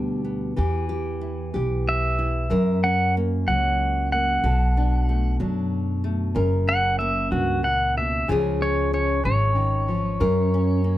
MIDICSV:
0, 0, Header, 1, 4, 480
1, 0, Start_track
1, 0, Tempo, 641711
1, 436, Time_signature, 6, 3, 24, 8
1, 8212, End_track
2, 0, Start_track
2, 0, Title_t, "Pedal steel guitar"
2, 0, Program_c, 0, 26
2, 1411, Note_on_c, 0, 76, 82
2, 2102, Note_off_c, 0, 76, 0
2, 2122, Note_on_c, 0, 78, 85
2, 2352, Note_off_c, 0, 78, 0
2, 2601, Note_on_c, 0, 78, 80
2, 3064, Note_off_c, 0, 78, 0
2, 3085, Note_on_c, 0, 78, 85
2, 4012, Note_off_c, 0, 78, 0
2, 5002, Note_on_c, 0, 78, 89
2, 5224, Note_off_c, 0, 78, 0
2, 5227, Note_on_c, 0, 76, 80
2, 5464, Note_off_c, 0, 76, 0
2, 5474, Note_on_c, 0, 66, 72
2, 5708, Note_off_c, 0, 66, 0
2, 5717, Note_on_c, 0, 78, 89
2, 5949, Note_off_c, 0, 78, 0
2, 5966, Note_on_c, 0, 76, 77
2, 6194, Note_off_c, 0, 76, 0
2, 6449, Note_on_c, 0, 73, 88
2, 6676, Note_off_c, 0, 73, 0
2, 6688, Note_on_c, 0, 73, 83
2, 6912, Note_off_c, 0, 73, 0
2, 6921, Note_on_c, 0, 73, 94
2, 8212, Note_off_c, 0, 73, 0
2, 8212, End_track
3, 0, Start_track
3, 0, Title_t, "Nylon-string guitar"
3, 0, Program_c, 1, 24
3, 0, Note_on_c, 1, 47, 70
3, 0, Note_on_c, 1, 55, 54
3, 0, Note_on_c, 1, 59, 51
3, 0, Note_on_c, 1, 62, 54
3, 0, Note_on_c, 1, 67, 66
3, 175, Note_off_c, 1, 59, 0
3, 184, Note_on_c, 1, 59, 52
3, 400, Note_off_c, 1, 55, 0
3, 401, Note_off_c, 1, 59, 0
3, 403, Note_off_c, 1, 62, 0
3, 417, Note_off_c, 1, 67, 0
3, 422, Note_on_c, 1, 52, 74
3, 427, Note_on_c, 1, 67, 64
3, 432, Note_off_c, 1, 47, 0
3, 657, Note_off_c, 1, 67, 0
3, 666, Note_on_c, 1, 67, 60
3, 908, Note_on_c, 1, 64, 57
3, 1142, Note_off_c, 1, 67, 0
3, 1148, Note_on_c, 1, 59, 59
3, 1151, Note_on_c, 1, 67, 59
3, 1626, Note_off_c, 1, 64, 0
3, 1635, Note_on_c, 1, 64, 53
3, 1843, Note_off_c, 1, 59, 0
3, 1845, Note_off_c, 1, 67, 0
3, 1847, Note_off_c, 1, 64, 0
3, 1869, Note_off_c, 1, 52, 0
3, 1869, Note_on_c, 1, 42, 71
3, 1873, Note_on_c, 1, 70, 69
3, 2123, Note_on_c, 1, 61, 52
3, 2371, Note_on_c, 1, 58, 54
3, 2596, Note_off_c, 1, 61, 0
3, 2600, Note_on_c, 1, 54, 57
3, 2605, Note_on_c, 1, 61, 53
3, 3080, Note_off_c, 1, 58, 0
3, 3089, Note_on_c, 1, 58, 51
3, 3286, Note_off_c, 1, 70, 0
3, 3294, Note_off_c, 1, 58, 0
3, 3312, Note_off_c, 1, 42, 0
3, 3318, Note_on_c, 1, 47, 68
3, 3320, Note_off_c, 1, 61, 0
3, 3320, Note_on_c, 1, 69, 65
3, 3569, Note_on_c, 1, 62, 57
3, 3807, Note_on_c, 1, 57, 57
3, 4033, Note_off_c, 1, 54, 0
3, 4034, Note_off_c, 1, 62, 0
3, 4036, Note_on_c, 1, 54, 58
3, 4043, Note_on_c, 1, 62, 56
3, 4508, Note_off_c, 1, 57, 0
3, 4517, Note_on_c, 1, 57, 55
3, 4727, Note_off_c, 1, 54, 0
3, 4729, Note_off_c, 1, 69, 0
3, 4730, Note_off_c, 1, 62, 0
3, 4748, Note_on_c, 1, 42, 72
3, 4754, Note_on_c, 1, 70, 67
3, 4757, Note_off_c, 1, 47, 0
3, 4757, Note_off_c, 1, 57, 0
3, 4997, Note_on_c, 1, 61, 61
3, 5239, Note_on_c, 1, 58, 58
3, 5467, Note_off_c, 1, 42, 0
3, 5470, Note_on_c, 1, 43, 60
3, 5706, Note_off_c, 1, 43, 0
3, 5709, Note_on_c, 1, 46, 62
3, 5952, Note_off_c, 1, 46, 0
3, 5961, Note_on_c, 1, 47, 57
3, 6166, Note_off_c, 1, 70, 0
3, 6169, Note_off_c, 1, 58, 0
3, 6191, Note_off_c, 1, 47, 0
3, 6194, Note_on_c, 1, 49, 75
3, 6203, Note_on_c, 1, 53, 60
3, 6206, Note_off_c, 1, 61, 0
3, 6206, Note_on_c, 1, 61, 65
3, 6211, Note_on_c, 1, 65, 64
3, 6220, Note_on_c, 1, 68, 74
3, 6444, Note_off_c, 1, 65, 0
3, 6454, Note_on_c, 1, 65, 61
3, 6680, Note_off_c, 1, 61, 0
3, 6683, Note_on_c, 1, 61, 60
3, 6899, Note_off_c, 1, 49, 0
3, 6908, Note_on_c, 1, 49, 65
3, 7144, Note_off_c, 1, 49, 0
3, 7147, Note_on_c, 1, 51, 66
3, 7384, Note_off_c, 1, 53, 0
3, 7392, Note_off_c, 1, 51, 0
3, 7393, Note_on_c, 1, 53, 65
3, 7617, Note_off_c, 1, 65, 0
3, 7620, Note_off_c, 1, 68, 0
3, 7631, Note_on_c, 1, 42, 77
3, 7634, Note_on_c, 1, 70, 72
3, 7635, Note_off_c, 1, 53, 0
3, 7884, Note_off_c, 1, 61, 0
3, 7884, Note_on_c, 1, 61, 62
3, 8109, Note_on_c, 1, 58, 58
3, 8212, Note_off_c, 1, 42, 0
3, 8212, Note_off_c, 1, 58, 0
3, 8212, Note_off_c, 1, 61, 0
3, 8212, Note_off_c, 1, 70, 0
3, 8212, End_track
4, 0, Start_track
4, 0, Title_t, "Upright bass"
4, 0, Program_c, 2, 32
4, 0, Note_on_c, 2, 38, 84
4, 405, Note_off_c, 2, 38, 0
4, 435, Note_on_c, 2, 40, 91
4, 1126, Note_off_c, 2, 40, 0
4, 1164, Note_on_c, 2, 35, 79
4, 1850, Note_off_c, 2, 35, 0
4, 1878, Note_on_c, 2, 42, 95
4, 2567, Note_off_c, 2, 42, 0
4, 2601, Note_on_c, 2, 37, 78
4, 3288, Note_off_c, 2, 37, 0
4, 3318, Note_on_c, 2, 35, 88
4, 4007, Note_off_c, 2, 35, 0
4, 4038, Note_on_c, 2, 42, 87
4, 4727, Note_off_c, 2, 42, 0
4, 4755, Note_on_c, 2, 30, 93
4, 5445, Note_off_c, 2, 30, 0
4, 5474, Note_on_c, 2, 37, 86
4, 6165, Note_off_c, 2, 37, 0
4, 6201, Note_on_c, 2, 37, 95
4, 6889, Note_off_c, 2, 37, 0
4, 6920, Note_on_c, 2, 32, 94
4, 7609, Note_off_c, 2, 32, 0
4, 7636, Note_on_c, 2, 42, 103
4, 8212, Note_off_c, 2, 42, 0
4, 8212, End_track
0, 0, End_of_file